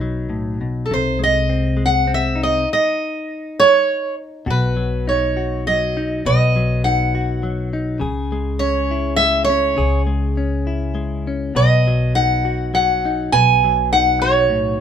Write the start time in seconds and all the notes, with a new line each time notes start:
Already playing: B1 B2 D#4 B4
0.01 F#3
0.30 A2
0.61 B2
0.86 A4
0.91 C2 C3 C5
1.19 G#3
1.23 D#5
1.50 C4
1.77 G#3
1.86 F#5
2.07 C4
2.14 E5
2.36 D#4
2.43 D#5
2.73 D#5
3.60 C#5
4.46 B1 B2 F#4
4.50 B4
4.77 F#3
5.07 D#4 C#5
5.37 F#4
5.67 F#3 D#5
5.97 D#4
6.25 B1 B2 B4 D#5
6.56 F#3
6.84 D#4 F#5
7.15 F#4
7.43 F#3
7.73 D#4
8.00 C#2 C#3 G#4
8.32 G#3
8.59 C#4 C#5
8.91 E4
9.16 G#3 E5
9.44 C#5
9.50 C#4
9.77 C#2 C#3 G#4
10.07 G#3
10.37 C#4
10.67 E4
10.95 G#3
11.27 C#4
11.55 B1 B2 B4 D#5
11.87 F#3
12.15 D#4 F#5
12.45 F#4
12.74 F#3 F#5
13.05 D#4
13.32 B1 B2 B4 G#5
13.64 F#3
13.93 D#4 F#5
14.22 F#4 C#5
14.50 A2